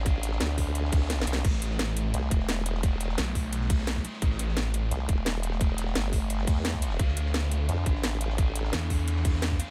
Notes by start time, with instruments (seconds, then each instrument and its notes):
Already playing: wobble bass A1
0.05 distorted electric guitar D4 A4 F5, kick, closed hi-hat, ride
0.23 snare, closed hi-hat, ride
0.32 snare
0.40 wobble bass D2, snare, closed hi-hat, ride
0.58 kick, open hi-hat, ride
0.67 ride
0.75 closed hi-hat, ride
0.85 snare
0.92 wobble bass D2, kick, closed hi-hat, open hi-hat
1.01 snare
1.10 snare, closed hi-hat, ride
1.18 snare, ride
1.27 wobble bass C2, distorted electric guitar D4 A4 F5, closed hi-hat, ride
1.33 snare
1.36 snare
1.44 detuned saw bass A1, distorted electric guitar A3 E4 C5, kick, closed hi-hat, crash, ride
1.53 snare
1.62 detuned saw bass A1, closed hi-hat, ride
1.71 snare
1.79 snare, closed hi-hat, ride
1.88 snare
1.97 closed hi-hat, ride
2.14 wobble bass C2, closed hi-hat, ride
2.23 ride
2.31 wobble bass E1, kick, closed hi-hat, ride
2.40 snare
2.49 snare, closed hi-hat, ride
2.66 distorted electric guitar A3 E4 C5, closed hi-hat, ride
2.75 snare
2.83 distorted electric guitar A3 E4 C5, kick, closed hi-hat, ride
3.00 snare, closed hi-hat, ride
3.09 snare
3.17 detuned saw bass B1, snare, closed hi-hat, ride
3.35 kick, open hi-hat, ride
3.44 ride
3.53 closed hi-hat, ride
3.61 snare
3.70 kick, closed hi-hat, open hi-hat
3.79 snare
3.87 snare, closed hi-hat, ride
3.96 kick, snare
4.04 distorted electric guitar A3 E4 C5, closed hi-hat, ride
4.13 snare
4.22 detuned saw bass A1, distorted electric guitar A3 E4 C5, kick, closed hi-hat, ride
4.31 snare
4.39 detuned saw bass A1, closed hi-hat, ride
4.49 snare
4.57 snare, closed hi-hat, ride
4.65 snare
4.74 closed hi-hat, ride
4.91 wobble bass C2, closed hi-hat, ride
5.00 ride
5.09 wobble bass E1, kick, closed hi-hat, ride
5.18 ride
5.26 snare, closed hi-hat, ride
5.35 snare
5.43 distorted electric guitar A3 E4 C5, closed hi-hat, ride
5.52 snare
5.61 distorted electric guitar A3 E4 C5, kick, closed hi-hat, ride
5.78 snare, closed hi-hat, ride
5.87 snare
5.95 wobble bass G1, snare, closed hi-hat, ride
6.13 kick, open hi-hat, ride
6.22 ride
6.30 closed hi-hat, ride
6.38 snare
6.47 wobble bass E2, kick, closed hi-hat, open hi-hat
6.56 snare
6.64 snare, closed hi-hat, ride
6.73 kick, snare
6.82 distorted electric guitar A3 E4 C5, closed hi-hat, ride
6.90 snare
6.99 detuned saw bass D2, distorted electric guitar D4 A4 F5, kick, closed hi-hat, ride
7.08 snare
7.17 detuned saw bass D2, closed hi-hat, ride
7.26 snare
7.34 snare, closed hi-hat, ride
7.43 snare
7.51 closed hi-hat, ride
7.69 wobble bass F2, closed hi-hat, ride
7.78 ride
7.86 wobble bass A1, kick, closed hi-hat, ride
7.95 snare
8.04 snare, closed hi-hat, ride
8.21 distorted electric guitar D4 A4 F5, closed hi-hat, ride
8.30 snare
8.38 distorted electric guitar D4 A4 F5, kick, closed hi-hat, ride
8.55 snare, closed hi-hat, ride
8.64 snare
8.73 detuned saw bass E2, snare, closed hi-hat, ride
8.90 kick, open hi-hat, ride
8.99 ride
9.08 closed hi-hat, ride
9.16 snare
9.25 kick, closed hi-hat, open hi-hat
9.33 snare
9.42 snare, closed hi-hat, ride
9.51 kick, snare
9.59 distorted electric guitar D4 A4 F5, closed hi-hat, ride